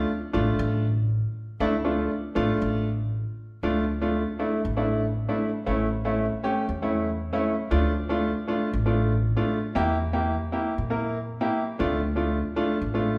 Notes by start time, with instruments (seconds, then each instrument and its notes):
0.33 upright bass A1, upright piano A3 D4 F4
0.59 upright bass A1
1.60 upright bass D2, upright piano A3 D4 E4
1.84 upright piano A3 D4 F4
2.35 upright bass A1, upright piano A3 D4 F4
2.62 upright bass A1
3.63 upright bass D2, upright piano A3 D4 F4
4.01 upright piano A3 D4 F4
4.39 upright piano A3 D4 E4
4.65 upright bass A1
4.77 upright piano A3 D4 E4
5.29 upright piano A3 D4 E4
5.66 upright bass A1, upright piano A3 C#4 E4
6.05 upright piano A3 C#4 E4
6.43 upright piano A3 C#4 G4
6.69 upright bass E2
6.82 upright piano A3 C#4 E4
7.33 upright piano A3 C#4 E4
7.71 upright bass D2, upright piano A3 D4 F4
8.09 upright piano A3 D4 F4
8.47 upright piano A3 D4 F4
8.73 upright bass A1
8.86 upright piano A3 D4 F4
9.37 upright piano A3 D4 F4
9.75 upright bass E2, upright piano A#3 E4 G4
10.13 upright piano A#3 E4 G4
10.52 upright piano A#3 E4 G4
10.78 upright bass A#2
10.90 upright piano A#3 E4 A#4
11.41 upright piano A#3 E4 G4
11.79 upright bass D2, upright piano A3 D4 F4
12.16 upright piano A3 D4 F4
12.56 upright piano A3 D4 F4
12.82 upright bass A1
12.94 upright piano A3 D4 F4